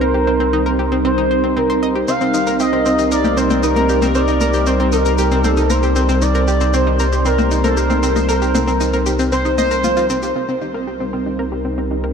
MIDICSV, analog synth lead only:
0, 0, Header, 1, 2, 480
1, 0, Start_track
1, 0, Key_signature, -3, "minor"
1, 0, Tempo, 517241
1, 11, Time_signature, 4, 2, 24, 8
1, 11259, End_track
2, 0, Start_track
2, 0, Title_t, "Analog synth lead"
2, 0, Program_c, 0, 81
2, 10, Note_on_c, 0, 70, 110
2, 693, Note_off_c, 0, 70, 0
2, 971, Note_on_c, 0, 72, 107
2, 1454, Note_on_c, 0, 70, 98
2, 1468, Note_off_c, 0, 72, 0
2, 1813, Note_off_c, 0, 70, 0
2, 1934, Note_on_c, 0, 77, 109
2, 2379, Note_off_c, 0, 77, 0
2, 2414, Note_on_c, 0, 75, 109
2, 2859, Note_off_c, 0, 75, 0
2, 2893, Note_on_c, 0, 74, 109
2, 3132, Note_on_c, 0, 72, 102
2, 3146, Note_off_c, 0, 74, 0
2, 3373, Note_on_c, 0, 70, 100
2, 3387, Note_off_c, 0, 72, 0
2, 3852, Note_on_c, 0, 74, 105
2, 3866, Note_off_c, 0, 70, 0
2, 4334, Note_on_c, 0, 72, 97
2, 4348, Note_off_c, 0, 74, 0
2, 4565, Note_off_c, 0, 72, 0
2, 4571, Note_on_c, 0, 70, 101
2, 5044, Note_off_c, 0, 70, 0
2, 5044, Note_on_c, 0, 69, 101
2, 5292, Note_on_c, 0, 72, 100
2, 5306, Note_off_c, 0, 69, 0
2, 5772, Note_on_c, 0, 74, 105
2, 5786, Note_off_c, 0, 72, 0
2, 6255, Note_on_c, 0, 72, 96
2, 6269, Note_off_c, 0, 74, 0
2, 6729, Note_off_c, 0, 72, 0
2, 6734, Note_on_c, 0, 70, 99
2, 7068, Note_off_c, 0, 70, 0
2, 7092, Note_on_c, 0, 69, 84
2, 7211, Note_on_c, 0, 70, 86
2, 7225, Note_off_c, 0, 69, 0
2, 7571, Note_off_c, 0, 70, 0
2, 7691, Note_on_c, 0, 70, 84
2, 8374, Note_off_c, 0, 70, 0
2, 8650, Note_on_c, 0, 72, 118
2, 8874, Note_off_c, 0, 72, 0
2, 8890, Note_on_c, 0, 72, 119
2, 9337, Note_off_c, 0, 72, 0
2, 11259, End_track
0, 0, End_of_file